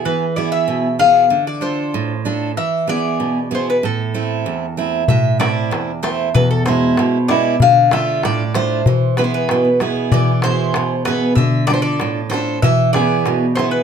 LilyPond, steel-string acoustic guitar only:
\new Staff \with { instrumentName = "Steel-string acoustic guitar" } { \time 2/4 \key e \phrygian \tempo 4 = 96 <e b e' gis'>8 <b e' gis'>8 b,8 <b e' gis'>8 | d8 <d' f' a'>8 a,8 <d' f' a'>8 | e8 <b e' gis'>8 b,8 <b e' gis'>8 | a,8 <a c' e'>8 e,8 <a c' e'>8 |
a,8 <a c' e'>8 e,8 <a c' e'>8 | e,8 <b, gis e'>8 b,8 <gis b e'>8 | d8 <a d' f'>8 a,8 <a d' f'>8 | e8 <b e' gis'>8 b,8 <b e' gis'>8 |
e8 <b, e' gis'>8 b,8 <b e' gis'>8 | d8 <d' f' a'>8 a,8 <d' f' a'>8 | e8 <b e' gis'>8 b,8 <b e' gis'>8 | }